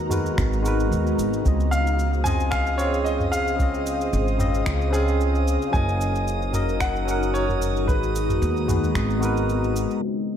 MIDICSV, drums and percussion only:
0, 0, Header, 1, 2, 480
1, 0, Start_track
1, 0, Key_signature, -5, "major"
1, 0, Tempo, 535714
1, 1301, Time_signature, 4, 2, 24, 8
1, 9290, End_track
2, 0, Start_track
2, 0, Title_t, "Drums"
2, 95, Note_on_c, 9, 45, 74
2, 101, Note_on_c, 9, 69, 79
2, 185, Note_off_c, 9, 45, 0
2, 190, Note_off_c, 9, 69, 0
2, 233, Note_on_c, 9, 69, 36
2, 323, Note_off_c, 9, 69, 0
2, 340, Note_on_c, 9, 26, 74
2, 341, Note_on_c, 9, 36, 126
2, 345, Note_on_c, 9, 69, 48
2, 429, Note_off_c, 9, 26, 0
2, 431, Note_off_c, 9, 36, 0
2, 435, Note_off_c, 9, 69, 0
2, 476, Note_on_c, 9, 69, 23
2, 566, Note_off_c, 9, 69, 0
2, 586, Note_on_c, 9, 69, 81
2, 676, Note_off_c, 9, 69, 0
2, 716, Note_on_c, 9, 69, 33
2, 806, Note_off_c, 9, 69, 0
2, 827, Note_on_c, 9, 69, 46
2, 916, Note_off_c, 9, 69, 0
2, 956, Note_on_c, 9, 69, 24
2, 1046, Note_off_c, 9, 69, 0
2, 1065, Note_on_c, 9, 69, 81
2, 1155, Note_off_c, 9, 69, 0
2, 1195, Note_on_c, 9, 69, 32
2, 1285, Note_off_c, 9, 69, 0
2, 1302, Note_on_c, 9, 36, 125
2, 1304, Note_on_c, 9, 69, 44
2, 1392, Note_off_c, 9, 36, 0
2, 1394, Note_off_c, 9, 69, 0
2, 1435, Note_on_c, 9, 69, 22
2, 1525, Note_off_c, 9, 69, 0
2, 1544, Note_on_c, 9, 69, 79
2, 1634, Note_off_c, 9, 69, 0
2, 1674, Note_on_c, 9, 69, 36
2, 1764, Note_off_c, 9, 69, 0
2, 1783, Note_on_c, 9, 69, 47
2, 1873, Note_off_c, 9, 69, 0
2, 1913, Note_on_c, 9, 69, 22
2, 2003, Note_off_c, 9, 69, 0
2, 2017, Note_on_c, 9, 45, 71
2, 2022, Note_on_c, 9, 69, 81
2, 2106, Note_off_c, 9, 45, 0
2, 2112, Note_off_c, 9, 69, 0
2, 2152, Note_on_c, 9, 69, 34
2, 2241, Note_off_c, 9, 69, 0
2, 2254, Note_on_c, 9, 26, 72
2, 2260, Note_on_c, 9, 69, 46
2, 2262, Note_on_c, 9, 36, 115
2, 2344, Note_off_c, 9, 26, 0
2, 2349, Note_off_c, 9, 69, 0
2, 2351, Note_off_c, 9, 36, 0
2, 2389, Note_on_c, 9, 69, 22
2, 2479, Note_off_c, 9, 69, 0
2, 2500, Note_on_c, 9, 69, 72
2, 2589, Note_off_c, 9, 69, 0
2, 2633, Note_on_c, 9, 69, 31
2, 2722, Note_off_c, 9, 69, 0
2, 2741, Note_on_c, 9, 69, 46
2, 2831, Note_off_c, 9, 69, 0
2, 2866, Note_on_c, 9, 45, 62
2, 2871, Note_on_c, 9, 69, 21
2, 2955, Note_off_c, 9, 45, 0
2, 2961, Note_off_c, 9, 69, 0
2, 2982, Note_on_c, 9, 69, 79
2, 3071, Note_off_c, 9, 69, 0
2, 3115, Note_on_c, 9, 69, 30
2, 3204, Note_off_c, 9, 69, 0
2, 3221, Note_on_c, 9, 36, 127
2, 3222, Note_on_c, 9, 69, 43
2, 3311, Note_off_c, 9, 36, 0
2, 3312, Note_off_c, 9, 69, 0
2, 3354, Note_on_c, 9, 69, 21
2, 3444, Note_off_c, 9, 69, 0
2, 3462, Note_on_c, 9, 69, 77
2, 3552, Note_off_c, 9, 69, 0
2, 3594, Note_on_c, 9, 69, 33
2, 3684, Note_off_c, 9, 69, 0
2, 3702, Note_on_c, 9, 69, 47
2, 3792, Note_off_c, 9, 69, 0
2, 3833, Note_on_c, 9, 69, 21
2, 3923, Note_off_c, 9, 69, 0
2, 3935, Note_on_c, 9, 45, 76
2, 3940, Note_on_c, 9, 69, 70
2, 4024, Note_off_c, 9, 45, 0
2, 4030, Note_off_c, 9, 69, 0
2, 4072, Note_on_c, 9, 69, 32
2, 4162, Note_off_c, 9, 69, 0
2, 4177, Note_on_c, 9, 26, 76
2, 4180, Note_on_c, 9, 36, 114
2, 4183, Note_on_c, 9, 69, 47
2, 4267, Note_off_c, 9, 26, 0
2, 4270, Note_off_c, 9, 36, 0
2, 4272, Note_off_c, 9, 69, 0
2, 4313, Note_on_c, 9, 69, 22
2, 4403, Note_off_c, 9, 69, 0
2, 4424, Note_on_c, 9, 69, 71
2, 4514, Note_off_c, 9, 69, 0
2, 4553, Note_on_c, 9, 69, 34
2, 4643, Note_off_c, 9, 69, 0
2, 4664, Note_on_c, 9, 69, 44
2, 4754, Note_off_c, 9, 69, 0
2, 4796, Note_on_c, 9, 69, 23
2, 4885, Note_off_c, 9, 69, 0
2, 4906, Note_on_c, 9, 69, 78
2, 4996, Note_off_c, 9, 69, 0
2, 5036, Note_on_c, 9, 69, 31
2, 5125, Note_off_c, 9, 69, 0
2, 5142, Note_on_c, 9, 36, 120
2, 5146, Note_on_c, 9, 69, 40
2, 5231, Note_off_c, 9, 36, 0
2, 5235, Note_off_c, 9, 69, 0
2, 5275, Note_on_c, 9, 69, 20
2, 5365, Note_off_c, 9, 69, 0
2, 5384, Note_on_c, 9, 69, 78
2, 5474, Note_off_c, 9, 69, 0
2, 5515, Note_on_c, 9, 69, 31
2, 5604, Note_off_c, 9, 69, 0
2, 5623, Note_on_c, 9, 69, 46
2, 5713, Note_off_c, 9, 69, 0
2, 5753, Note_on_c, 9, 69, 21
2, 5843, Note_off_c, 9, 69, 0
2, 5854, Note_on_c, 9, 45, 77
2, 5860, Note_on_c, 9, 69, 73
2, 5944, Note_off_c, 9, 45, 0
2, 5949, Note_off_c, 9, 69, 0
2, 5994, Note_on_c, 9, 69, 30
2, 6084, Note_off_c, 9, 69, 0
2, 6097, Note_on_c, 9, 26, 80
2, 6102, Note_on_c, 9, 36, 115
2, 6103, Note_on_c, 9, 69, 46
2, 6187, Note_off_c, 9, 26, 0
2, 6192, Note_off_c, 9, 36, 0
2, 6192, Note_off_c, 9, 69, 0
2, 6235, Note_on_c, 9, 69, 23
2, 6325, Note_off_c, 9, 69, 0
2, 6346, Note_on_c, 9, 69, 73
2, 6435, Note_off_c, 9, 69, 0
2, 6477, Note_on_c, 9, 69, 33
2, 6566, Note_off_c, 9, 69, 0
2, 6586, Note_on_c, 9, 69, 45
2, 6676, Note_off_c, 9, 69, 0
2, 6713, Note_on_c, 9, 45, 66
2, 6719, Note_on_c, 9, 69, 22
2, 6803, Note_off_c, 9, 45, 0
2, 6808, Note_off_c, 9, 69, 0
2, 6826, Note_on_c, 9, 69, 74
2, 6916, Note_off_c, 9, 69, 0
2, 6959, Note_on_c, 9, 69, 31
2, 7048, Note_off_c, 9, 69, 0
2, 7063, Note_on_c, 9, 36, 120
2, 7067, Note_on_c, 9, 69, 46
2, 7153, Note_off_c, 9, 36, 0
2, 7157, Note_off_c, 9, 69, 0
2, 7198, Note_on_c, 9, 69, 21
2, 7288, Note_off_c, 9, 69, 0
2, 7307, Note_on_c, 9, 69, 78
2, 7396, Note_off_c, 9, 69, 0
2, 7431, Note_on_c, 9, 45, 62
2, 7437, Note_on_c, 9, 69, 35
2, 7521, Note_off_c, 9, 45, 0
2, 7526, Note_off_c, 9, 69, 0
2, 7546, Note_on_c, 9, 69, 44
2, 7635, Note_off_c, 9, 69, 0
2, 7677, Note_on_c, 9, 69, 20
2, 7766, Note_off_c, 9, 69, 0
2, 7782, Note_on_c, 9, 45, 86
2, 7783, Note_on_c, 9, 36, 58
2, 7787, Note_on_c, 9, 69, 74
2, 7871, Note_off_c, 9, 45, 0
2, 7872, Note_off_c, 9, 36, 0
2, 7877, Note_off_c, 9, 69, 0
2, 7920, Note_on_c, 9, 69, 32
2, 8009, Note_off_c, 9, 69, 0
2, 8023, Note_on_c, 9, 26, 82
2, 8023, Note_on_c, 9, 36, 112
2, 8028, Note_on_c, 9, 69, 44
2, 8112, Note_off_c, 9, 26, 0
2, 8112, Note_off_c, 9, 36, 0
2, 8118, Note_off_c, 9, 69, 0
2, 8156, Note_on_c, 9, 69, 23
2, 8245, Note_off_c, 9, 69, 0
2, 8266, Note_on_c, 9, 69, 73
2, 8356, Note_off_c, 9, 69, 0
2, 8397, Note_on_c, 9, 69, 34
2, 8486, Note_off_c, 9, 69, 0
2, 8506, Note_on_c, 9, 69, 45
2, 8596, Note_off_c, 9, 69, 0
2, 8637, Note_on_c, 9, 69, 22
2, 8727, Note_off_c, 9, 69, 0
2, 8746, Note_on_c, 9, 69, 80
2, 8835, Note_off_c, 9, 69, 0
2, 8877, Note_on_c, 9, 69, 30
2, 8967, Note_off_c, 9, 69, 0
2, 9290, End_track
0, 0, End_of_file